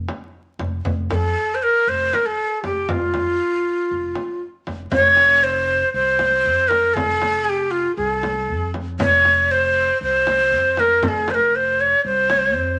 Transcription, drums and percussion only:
0.08 frame drum medium
0.59 frame drum medium
0.85 frame drum medium
1.11 frame drum medium
2.13 frame drum medium
2.64 frame drum medium
2.89 frame drum medium
3.14 frame drum medium
4.15 frame drum medium
4.67 frame drum medium
4.92 frame drum medium
5.17 frame drum medium
6.19 frame drum medium
6.71 frame drum medium
6.96 frame drum medium
7.22 frame drum medium
8.23 frame drum medium
8.74 frame drum medium
9.00 frame drum medium
9.25 frame drum medium
10.27 frame drum medium
10.77 frame drum medium
11.02 frame drum medium
11.28 frame drum medium
12.30 frame drum medium

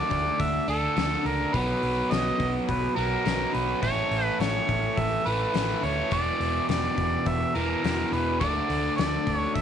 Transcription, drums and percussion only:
0.11 kick medium
0.11 open hi-hat soft
0.40 kick loud
0.40 open hi-hat medium
0.68 open hi-hat soft
0.97 snare loud
0.97 open hi-hat medium
1.26 open hi-hat soft
1.54 kick medium
1.54 open hi-hat medium
1.83 open hi-hat soft
2.11 snare loud
2.11 open hi-hat medium
2.40 kick medium
2.40 open hi-hat soft
2.69 kick medium
2.69 open hi-hat medium
2.98 open hi-hat soft
3.26 snare medium
3.26 open hi-hat medium
3.54 open hi-hat soft
3.83 kick medium
3.83 open hi-hat medium
4.12 open hi-hat medium
4.40 snare loud
4.40 open hi-hat medium
4.69 kick medium
4.69 open hi-hat medium
4.97 kick loud
4.97 open hi-hat medium
5.27 open hi-hat soft
5.54 snare loud
5.54 open hi-hat medium
5.83 open hi-hat soft
6.11 kick loud
6.11 open hi-hat medium
6.41 open hi-hat medium
6.69 snare loud
6.69 open hi-hat medium
6.98 kick medium
6.98 open hi-hat soft
7.26 kick loud
7.26 open hi-hat medium
7.55 open hi-hat soft
7.84 snare loud
7.84 open hi-hat medium
8.13 open hi-hat soft
8.41 kick loud
8.41 open hi-hat medium
8.70 open hi-hat medium
8.98 snare loud
8.98 open hi-hat medium
9.27 kick medium
9.27 open hi-hat medium
9.56 kick loud
9.56 open hi-hat medium

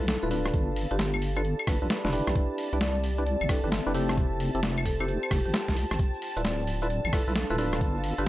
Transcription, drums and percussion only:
0.08 snare loud
0.08 closed hi-hat medium
0.31 open hi-hat loud
0.46 cross-stick medium
0.54 kick loud
0.54 closed hi-hat medium
0.76 open hi-hat loud
0.91 closed hi-hat medium
0.99 snare loud
0.99 closed hi-hat medium
1.14 claves medium
1.22 open hi-hat loud
1.37 closed hi-hat soft
1.37 claves medium
1.45 closed hi-hat medium
1.59 claves medium
1.67 kick loud
1.67 cross-stick medium
1.67 open hi-hat loud
1.90 snare loud
1.90 closed hi-hat medium
2.05 snare medium
2.13 open hi-hat loud
2.27 cross-stick medium
2.35 kick loud
2.35 closed hi-hat medium
2.58 open hi-hat loud
2.73 closed hi-hat medium
2.81 snare loud
2.81 closed hi-hat medium
3.04 open hi-hat medium
3.18 closed hi-hat soft
3.26 closed hi-hat medium
3.41 claves medium
3.49 kick loud
3.49 cross-stick medium
3.49 open hi-hat loud
3.72 snare loud
3.72 closed hi-hat medium
3.95 open hi-hat medium
4.09 cross-stick medium
4.17 kick loud
4.17 closed hi-hat medium
4.40 open hi-hat loud
4.55 closed hi-hat medium
4.63 snare loud
4.63 closed hi-hat medium
4.78 claves medium
4.86 kick medium
4.86 open hi-hat medium
5.00 closed hi-hat soft
5.00 claves medium
5.08 closed hi-hat medium
5.23 claves medium
5.31 kick loud
5.31 cross-stick medium
5.31 open hi-hat loud
5.54 snare loud
5.54 closed hi-hat medium
5.68 kick medium
5.68 snare medium
5.76 open hi-hat medium
5.91 cross-stick medium
5.99 kick loud
5.99 closed hi-hat medium
5.99 shaker medium
6.14 shaker soft
6.22 open hi-hat loud
6.37 closed hi-hat medium
6.37 shaker medium
6.45 snare loud
6.45 closed hi-hat medium
6.45 shaker medium
6.59 shaker soft
6.67 open hi-hat medium
6.82 closed hi-hat soft
6.82 shaker medium
6.90 closed hi-hat medium
6.90 shaker medium
7.05 claves medium
7.05 shaker soft
7.13 kick loud
7.13 cross-stick medium
7.13 open hi-hat loud
7.29 shaker medium
7.35 snare loud
7.35 closed hi-hat medium
7.35 shaker medium
7.50 shaker soft
7.58 open hi-hat medium
7.72 cross-stick medium
7.72 shaker medium
7.81 kick loud
7.81 closed hi-hat medium
7.81 shaker medium
7.96 shaker soft
8.04 open hi-hat loud
8.18 closed hi-hat medium
8.18 shaker medium

